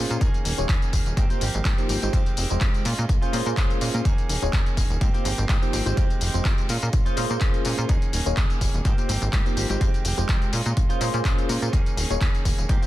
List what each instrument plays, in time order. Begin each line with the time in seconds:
Already playing: tine electric piano A#3 C#4 F4 G#4 C5, clean electric guitar C#4
0.09 analog synth bass A#2, clean electric guitar C#4 F4, closed hi-hat, tambourine
0.20 analog synth bass D#2, clean electric guitar D#3 A#3 C#4 G#4, kick, closed hi-hat, tambourine
0.34 closed hi-hat, tambourine
0.44 analog synth bass D#1, clean electric guitar D#3 A#3 C#4 G#4, open hi-hat, tambourine
0.58 analog synth bass D#1, tine electric piano A#3 D#4 F4 G#4 C#5, tambourine
0.68 analog synth bass D#2, clean electric guitar D#3 A#3 C#4 G#4, kick, clap, closed hi-hat, tambourine
0.82 closed hi-hat, tambourine
0.92 analog synth bass D#1, clean electric guitar D#3 A#3 C#4 G#4, kick, open hi-hat, tambourine
1.06 analog synth bass D#1, closed hi-hat, tambourine
1.16 analog synth bass G#2, clean electric guitar F3 A#3 C4 G4, kick, closed hi-hat, tambourine
1.29 tine electric piano A#3 D#4 F4 G4 C5, clean electric guitar A#3 C4 G4, closed hi-hat, tambourine
1.40 analog synth bass G#1, clean electric guitar F3 A#3 C4 G4, open hi-hat, tambourine
1.54 analog synth bass G#1, closed hi-hat, tambourine
1.65 analog synth bass G#2, clean electric guitar F3 A#3 G4, kick, clap, closed hi-hat, tambourine
1.78 tine electric piano A#3 D#4 F4 G4 C5, closed hi-hat, tambourine
1.89 analog synth bass G#1, clean electric guitar F3 A#3 C4 G4, open hi-hat, tambourine
2.02 analog synth bass G#1, tine electric piano G#3 D#4 F4 G4 C5, clean electric guitar A#3 C4 G4, tambourine
2.13 analog synth bass F2, clean electric guitar D#3 G#3 C4 G4, kick, closed hi-hat, tambourine
2.26 closed hi-hat, tambourine
2.36 analog synth bass F1, clean electric guitar D#3 G#3 C4 G4, open hi-hat, tambourine
2.50 analog synth bass F1, tine electric piano G#3 D#4 F4 G4 C5, closed hi-hat, tambourine
2.61 analog synth bass F2, clean electric guitar D#3 G#3 C4 G4, kick, clap, closed hi-hat, tambourine
2.74 closed hi-hat, tambourine
2.84 analog synth bass A#2, clean electric guitar G#3 C#4 F4, open hi-hat, tambourine
2.98 analog synth bass A#2, closed hi-hat, tambourine
3.09 analog synth bass A#1, kick, closed hi-hat, tambourine
3.21 tine electric piano A#3 C#4 F4 G#4 C5, clean electric guitar C#4 F4, closed hi-hat, tambourine
3.33 analog synth bass A#2, clean electric guitar G#3 C#4 F4, tine electric piano A#3 C#4 F4 G#4 C5, open hi-hat, tambourine
3.46 analog synth bass A#2, tine electric piano A#3 C#4 F4 G#4 C5, tambourine
3.57 analog synth bass A#1, clean electric guitar G#3 C#4 F4, kick, clap, closed hi-hat, tambourine
3.70 closed hi-hat, tambourine
3.80 analog synth bass A#2, clean electric guitar G#3 C#4 F4, open hi-hat, tambourine
3.93 analog synth bass A#2, clean electric guitar C#4 F4, closed hi-hat, tambourine
4.05 analog synth bass D#2, clean electric guitar D#3 A#3 C#4 G#4, kick, closed hi-hat, tambourine
4.18 closed hi-hat, tambourine
4.29 analog synth bass D#1, clean electric guitar D#3 A#3 C#4 G#4, open hi-hat, tambourine
4.42 analog synth bass D#1, tine electric piano A#3 D#4 F4 G#4 C#5, closed hi-hat, tambourine
4.53 analog synth bass D#2, clean electric guitar D#3 A#3 C#4 G#4, kick, clap, closed hi-hat, tambourine
4.66 closed hi-hat, tambourine
4.77 analog synth bass D#1, clean electric guitar D#3 A#3 C#4 G#4, kick, open hi-hat, tambourine
4.90 analog synth bass D#1, tambourine
5.01 analog synth bass G#2, clean electric guitar F3 A#3 C4 G4, kick, closed hi-hat, tambourine
5.14 tine electric piano A#3 D#4 F4 G4 C5, clean electric guitar A#3 C4 G4, closed hi-hat, tambourine
5.24 analog synth bass G#1, clean electric guitar F3 A#3 C4 G4, open hi-hat, tambourine
5.38 analog synth bass G#1, closed hi-hat, tambourine
5.49 analog synth bass G#2, clean electric guitar F3 A#3 C4 G4, kick, clap, closed hi-hat, tambourine
5.61 tine electric piano A#3 D#4 F4 G4 C5, closed hi-hat, tambourine
5.72 analog synth bass G#1, clean electric guitar F3 A#3 C4 G4, open hi-hat, tambourine
5.85 analog synth bass G#1, tine electric piano G#3 D#4 F4 G4 C5, clean electric guitar A#3 C4 G4, closed hi-hat, tambourine
5.96 analog synth bass F2, clean electric guitar D#3 G#3 G4, kick, closed hi-hat, tambourine
6.10 closed hi-hat, tambourine
6.20 analog synth bass F1, clean electric guitar D#3 G#3 C4 G4, open hi-hat, tambourine
6.34 analog synth bass F1, tine electric piano G#3 D#4 F4 G4 C5, closed hi-hat, tambourine
6.45 analog synth bass F2, clean electric guitar D#3 G#3 C4 G4, kick, clap, closed hi-hat, tambourine
6.58 closed hi-hat, tambourine
6.69 analog synth bass A#2, clean electric guitar G#3 C#4 F4, open hi-hat, tambourine
6.82 analog synth bass A#2, closed hi-hat, tambourine
6.93 analog synth bass A#1, kick, closed hi-hat, tambourine
7.05 tine electric piano A#3 C#4 F4 G#4 C5, clean electric guitar C#4 F4, closed hi-hat, tambourine
7.16 analog synth bass A#2, clean electric guitar G#3 C#4 F4, tine electric piano A#3 C#4 F4 G#4 C5, open hi-hat, tambourine
7.29 analog synth bass A#2, tine electric piano A#3 C#4 F4 G#4 C5, closed hi-hat, tambourine
7.41 analog synth bass A#1, clean electric guitar G#3 C#4 F4, kick, clap, closed hi-hat, tambourine
7.54 closed hi-hat, tambourine
7.64 analog synth bass A#2, clean electric guitar G#3 C#4 F4, open hi-hat, tambourine
7.78 analog synth bass A#2, clean electric guitar C#4 F4, closed hi-hat, tambourine
7.89 analog synth bass D#2, clean electric guitar D#3 A#3 C#4 G#4, kick, closed hi-hat, tambourine
8.02 closed hi-hat, tambourine
8.12 analog synth bass D#1, clean electric guitar D#3 A#3 C#4 G#4, open hi-hat, tambourine
8.26 analog synth bass D#1, tine electric piano A#3 D#4 F4 G#4 C#5, closed hi-hat, tambourine
8.37 analog synth bass D#2, clean electric guitar D#3 A#3 C#4 G#4, kick, clap, closed hi-hat, tambourine
8.50 closed hi-hat, tambourine
8.60 analog synth bass D#1, clean electric guitar D#3 A#3 C#4 G#4, kick, open hi-hat, tambourine
8.74 analog synth bass D#1, closed hi-hat, tambourine
8.85 analog synth bass G#2, clean electric guitar F3 A#3 C4 G4, kick, closed hi-hat, tambourine
8.97 tine electric piano A#3 D#4 F4 G4 C5, clean electric guitar A#3 C4 G4, closed hi-hat, tambourine
9.08 analog synth bass G#1, clean electric guitar F3 A#3 C4 G4, open hi-hat, tambourine
9.22 analog synth bass G#1, closed hi-hat, tambourine
9.33 analog synth bass G#2, clean electric guitar F3 A#3 C4 G4, kick, clap, closed hi-hat, tambourine
9.45 tine electric piano A#3 D#4 F4 G4 C5, closed hi-hat, tambourine
9.57 analog synth bass G#1, clean electric guitar F3 A#3 C4 G4, open hi-hat, tambourine
9.69 analog synth bass G#1, tine electric piano G#3 D#4 F4 G4 C5, clean electric guitar A#3 C4 G4, closed hi-hat, tambourine
9.81 analog synth bass F2, clean electric guitar D#3 G#3 C4 G4, kick, closed hi-hat, tambourine
9.94 closed hi-hat, tambourine
10.04 analog synth bass F1, clean electric guitar D#3 G#3 C4 G4, open hi-hat, tambourine
10.17 analog synth bass F1, tine electric piano G#3 D#4 F4 G4 C5, closed hi-hat, tambourine
10.28 analog synth bass F2, clean electric guitar D#3 G#3 C4 G4, kick, clap, closed hi-hat, tambourine
10.42 closed hi-hat, tambourine
10.52 analog synth bass A#2, clean electric guitar G#3 C#4 F4, open hi-hat, tambourine
10.66 analog synth bass A#2, closed hi-hat, tambourine
10.77 analog synth bass A#1, kick, closed hi-hat, tambourine
10.89 tine electric piano A#3 C#4 F4 G#4 C5, clean electric guitar C#4 F4, closed hi-hat, tambourine
11.00 analog synth bass A#2, clean electric guitar G#3 C#4 F4, tine electric piano A#3 C#4 F4 G#4 C5, open hi-hat, tambourine
11.13 analog synth bass A#2, tine electric piano A#3 C#4 F4 G#4 C5, closed hi-hat, tambourine
11.25 analog synth bass A#1, clean electric guitar G#3 C#4 F4, kick, clap, closed hi-hat, tambourine
11.38 closed hi-hat, tambourine
11.48 analog synth bass A#2, clean electric guitar G#3 C#4 F4, open hi-hat, tambourine
11.62 analog synth bass A#2, clean electric guitar C#4 F4, closed hi-hat, tambourine
11.72 analog synth bass D#2, clean electric guitar D#3 A#3 C#4 G#4, kick, closed hi-hat, tambourine
11.86 closed hi-hat, tambourine
11.96 analog synth bass D#1, clean electric guitar D#3 A#3 C#4 G#4, open hi-hat, tambourine
12.10 analog synth bass D#1, tine electric piano A#3 D#4 F4 G#4 C#5, closed hi-hat, tambourine
12.21 analog synth bass D#2, clean electric guitar D#3 A#3 C#4 G#4, kick, clap, closed hi-hat, tambourine
12.35 closed hi-hat, tambourine
12.45 analog synth bass D#1, clean electric guitar D#3 A#3 C#4 G#4, kick, open hi-hat, tambourine
12.58 analog synth bass D#1, closed hi-hat, tambourine
12.69 analog synth bass G#2, clean electric guitar F3 A#3 C4 G4, kick, closed hi-hat, tambourine
12.81 tine electric piano A#3 D#4 F4 G4 C5, clean electric guitar C4 G4, closed hi-hat, tambourine